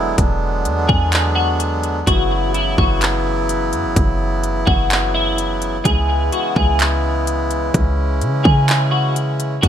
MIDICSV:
0, 0, Header, 1, 5, 480
1, 0, Start_track
1, 0, Tempo, 472441
1, 186, Time_signature, 4, 2, 24, 8
1, 9836, End_track
2, 0, Start_track
2, 0, Title_t, "Clean electric guitar"
2, 0, Program_c, 0, 27
2, 900, Note_on_c, 0, 68, 86
2, 1354, Note_off_c, 0, 68, 0
2, 1376, Note_on_c, 0, 66, 97
2, 1609, Note_off_c, 0, 66, 0
2, 2107, Note_on_c, 0, 66, 102
2, 2558, Note_off_c, 0, 66, 0
2, 2585, Note_on_c, 0, 64, 82
2, 2813, Note_off_c, 0, 64, 0
2, 2825, Note_on_c, 0, 66, 80
2, 3054, Note_off_c, 0, 66, 0
2, 4742, Note_on_c, 0, 66, 78
2, 5195, Note_off_c, 0, 66, 0
2, 5227, Note_on_c, 0, 64, 83
2, 5454, Note_off_c, 0, 64, 0
2, 5947, Note_on_c, 0, 68, 110
2, 6398, Note_off_c, 0, 68, 0
2, 6427, Note_on_c, 0, 66, 81
2, 6655, Note_off_c, 0, 66, 0
2, 6665, Note_on_c, 0, 68, 72
2, 6894, Note_off_c, 0, 68, 0
2, 8578, Note_on_c, 0, 68, 86
2, 9033, Note_off_c, 0, 68, 0
2, 9056, Note_on_c, 0, 66, 82
2, 9289, Note_off_c, 0, 66, 0
2, 9779, Note_on_c, 0, 66, 99
2, 9836, Note_off_c, 0, 66, 0
2, 9836, End_track
3, 0, Start_track
3, 0, Title_t, "Accordion"
3, 0, Program_c, 1, 21
3, 0, Note_on_c, 1, 50, 81
3, 0, Note_on_c, 1, 54, 73
3, 0, Note_on_c, 1, 56, 73
3, 0, Note_on_c, 1, 59, 73
3, 0, Note_on_c, 1, 64, 92
3, 167, Note_off_c, 1, 64, 0
3, 186, Note_on_c, 1, 62, 87
3, 2067, Note_off_c, 1, 50, 0
3, 2068, Note_off_c, 1, 56, 0
3, 2087, Note_off_c, 1, 62, 0
3, 2107, Note_on_c, 1, 52, 73
3, 2108, Note_on_c, 1, 64, 83
3, 2109, Note_on_c, 1, 49, 79
3, 5905, Note_off_c, 1, 54, 0
3, 5909, Note_off_c, 1, 49, 0
3, 5947, Note_on_c, 1, 49, 78
3, 5947, Note_on_c, 1, 56, 73
3, 7825, Note_off_c, 1, 59, 0
3, 7868, Note_on_c, 1, 61, 69
3, 9746, Note_off_c, 1, 52, 0
3, 9746, Note_off_c, 1, 64, 0
3, 9748, Note_off_c, 1, 49, 0
3, 9748, Note_off_c, 1, 56, 0
3, 9768, Note_off_c, 1, 61, 0
3, 9785, Note_on_c, 1, 57, 73
3, 9786, Note_on_c, 1, 59, 72
3, 9786, Note_on_c, 1, 61, 83
3, 9786, Note_on_c, 1, 62, 87
3, 9788, Note_on_c, 1, 54, 69
3, 9836, Note_off_c, 1, 54, 0
3, 9836, Note_off_c, 1, 57, 0
3, 9836, Note_off_c, 1, 59, 0
3, 9836, Note_off_c, 1, 61, 0
3, 9836, Note_off_c, 1, 62, 0
3, 9836, End_track
4, 0, Start_track
4, 0, Title_t, "808-style bass"
4, 0, Program_c, 2, 38
4, 0, Note_on_c, 2, 28, 104
4, 145, Note_off_c, 2, 28, 0
4, 184, Note_on_c, 2, 28, 105
4, 663, Note_on_c, 2, 40, 100
4, 679, Note_off_c, 2, 28, 0
4, 893, Note_off_c, 2, 40, 0
4, 904, Note_on_c, 2, 40, 100
4, 2065, Note_off_c, 2, 40, 0
4, 2105, Note_on_c, 2, 30, 111
4, 2797, Note_off_c, 2, 30, 0
4, 2825, Note_on_c, 2, 30, 109
4, 3788, Note_on_c, 2, 42, 96
4, 3803, Note_off_c, 2, 30, 0
4, 3908, Note_on_c, 2, 30, 98
4, 3923, Note_off_c, 2, 42, 0
4, 4021, Note_off_c, 2, 30, 0
4, 4027, Note_on_c, 2, 30, 111
4, 4718, Note_off_c, 2, 30, 0
4, 4747, Note_on_c, 2, 30, 103
4, 5906, Note_off_c, 2, 30, 0
4, 5946, Note_on_c, 2, 37, 116
4, 6407, Note_off_c, 2, 37, 0
4, 6668, Note_on_c, 2, 37, 101
4, 7826, Note_off_c, 2, 37, 0
4, 7867, Note_on_c, 2, 37, 105
4, 8347, Note_on_c, 2, 49, 101
4, 8362, Note_off_c, 2, 37, 0
4, 8574, Note_off_c, 2, 49, 0
4, 8587, Note_on_c, 2, 49, 104
4, 9746, Note_off_c, 2, 49, 0
4, 9787, Note_on_c, 2, 35, 107
4, 9836, Note_off_c, 2, 35, 0
4, 9836, End_track
5, 0, Start_track
5, 0, Title_t, "Drums"
5, 183, Note_on_c, 9, 42, 87
5, 184, Note_on_c, 9, 36, 102
5, 285, Note_off_c, 9, 36, 0
5, 285, Note_off_c, 9, 42, 0
5, 663, Note_on_c, 9, 42, 68
5, 765, Note_off_c, 9, 42, 0
5, 905, Note_on_c, 9, 36, 90
5, 1006, Note_off_c, 9, 36, 0
5, 1142, Note_on_c, 9, 42, 71
5, 1151, Note_on_c, 9, 39, 116
5, 1243, Note_off_c, 9, 42, 0
5, 1253, Note_off_c, 9, 39, 0
5, 1625, Note_on_c, 9, 42, 92
5, 1727, Note_off_c, 9, 42, 0
5, 1864, Note_on_c, 9, 42, 70
5, 1966, Note_off_c, 9, 42, 0
5, 2105, Note_on_c, 9, 36, 102
5, 2106, Note_on_c, 9, 42, 88
5, 2207, Note_off_c, 9, 36, 0
5, 2208, Note_off_c, 9, 42, 0
5, 2585, Note_on_c, 9, 42, 67
5, 2687, Note_off_c, 9, 42, 0
5, 2826, Note_on_c, 9, 36, 86
5, 2928, Note_off_c, 9, 36, 0
5, 3063, Note_on_c, 9, 42, 68
5, 3072, Note_on_c, 9, 39, 108
5, 3165, Note_off_c, 9, 42, 0
5, 3174, Note_off_c, 9, 39, 0
5, 3548, Note_on_c, 9, 42, 87
5, 3650, Note_off_c, 9, 42, 0
5, 3787, Note_on_c, 9, 42, 67
5, 3889, Note_off_c, 9, 42, 0
5, 4027, Note_on_c, 9, 36, 105
5, 4027, Note_on_c, 9, 42, 84
5, 4129, Note_off_c, 9, 36, 0
5, 4129, Note_off_c, 9, 42, 0
5, 4506, Note_on_c, 9, 42, 71
5, 4608, Note_off_c, 9, 42, 0
5, 4747, Note_on_c, 9, 36, 90
5, 4849, Note_off_c, 9, 36, 0
5, 4985, Note_on_c, 9, 42, 68
5, 4995, Note_on_c, 9, 39, 112
5, 5087, Note_off_c, 9, 42, 0
5, 5096, Note_off_c, 9, 39, 0
5, 5469, Note_on_c, 9, 42, 88
5, 5570, Note_off_c, 9, 42, 0
5, 5707, Note_on_c, 9, 42, 69
5, 5809, Note_off_c, 9, 42, 0
5, 5946, Note_on_c, 9, 42, 90
5, 5947, Note_on_c, 9, 36, 98
5, 6048, Note_off_c, 9, 36, 0
5, 6048, Note_off_c, 9, 42, 0
5, 6426, Note_on_c, 9, 42, 70
5, 6527, Note_off_c, 9, 42, 0
5, 6667, Note_on_c, 9, 36, 86
5, 6768, Note_off_c, 9, 36, 0
5, 6904, Note_on_c, 9, 42, 67
5, 6913, Note_on_c, 9, 39, 112
5, 7005, Note_off_c, 9, 42, 0
5, 7015, Note_off_c, 9, 39, 0
5, 7389, Note_on_c, 9, 42, 89
5, 7491, Note_off_c, 9, 42, 0
5, 7626, Note_on_c, 9, 42, 66
5, 7728, Note_off_c, 9, 42, 0
5, 7867, Note_on_c, 9, 36, 101
5, 7867, Note_on_c, 9, 42, 84
5, 7968, Note_off_c, 9, 36, 0
5, 7969, Note_off_c, 9, 42, 0
5, 8346, Note_on_c, 9, 42, 69
5, 8448, Note_off_c, 9, 42, 0
5, 8587, Note_on_c, 9, 36, 89
5, 8688, Note_off_c, 9, 36, 0
5, 8824, Note_on_c, 9, 42, 67
5, 8833, Note_on_c, 9, 39, 110
5, 8925, Note_off_c, 9, 42, 0
5, 8935, Note_off_c, 9, 39, 0
5, 9308, Note_on_c, 9, 42, 90
5, 9410, Note_off_c, 9, 42, 0
5, 9547, Note_on_c, 9, 42, 70
5, 9649, Note_off_c, 9, 42, 0
5, 9787, Note_on_c, 9, 36, 100
5, 9787, Note_on_c, 9, 42, 88
5, 9836, Note_off_c, 9, 36, 0
5, 9836, Note_off_c, 9, 42, 0
5, 9836, End_track
0, 0, End_of_file